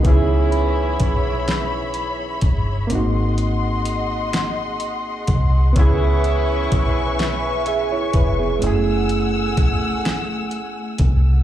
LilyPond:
<<
  \new Staff \with { instrumentName = "String section" } { \time 6/8 \key cis \phrygian \tempo 4. = 42 << { <cis'' e'' b''>2. | <dis'' fis'' bis''>2. | <e'' gis'' cis'''>2. | <fis'' gis'' e'''>2. | } \\ { gis'2.~ | gis'2. | b'2. | a2. | } >> }
  \new Staff \with { instrumentName = "Reed electric piano" } { \time 6/8 \key cis \phrygian << { <fis dis'>16 r2 r8. | r2. | r2 <gis' e''>16 <e' cis''>16 b'16 <b gis'>16~ | <b gis'>16 r2 r8. | } \\ { <b cis' e' gis'>2. | <ais bis dis' fis'>2. | <b cis' e' gis'>2 r4 | <gis a cis' e' gis'>2. | } >> }
  \new Staff \with { instrumentName = "Horn section" } { \time 6/8 \key cis \phrygian <e b cis' e'>2~ <e b cis' e'>8 r8 | r2. | <e b cis' e'>2~ <e b cis' e'>8 r8 | r2. | }
  \new Staff \with { instrumentName = "Fingered electric bass" } { \clef bass \time 6/8 \key cis \phrygian cis,4 b,,4. g,,8 | gis,,2~ gis,,8 bis,,8 | cis,4 b,,4. eis,,8 | fis,,2~ fis,,8 bis,,8 | }
  \new DrumStaff \with { instrumentName = "Drums" } \drummode { \time 6/8 <hh bd>8 hh8 <hh bd>8 <hh sn>8 hh8 <hh bd>8 | hh8 hh8 hh8 <hh sn>8 hh8 <hh bd>8 | <hh bd>8 hh8 <hh bd>8 <hh sn>8 hh8 <hh bd>8 | hh8 hh8 <hh bd>8 <hh sn>8 hh8 <hh bd>8 | }
>>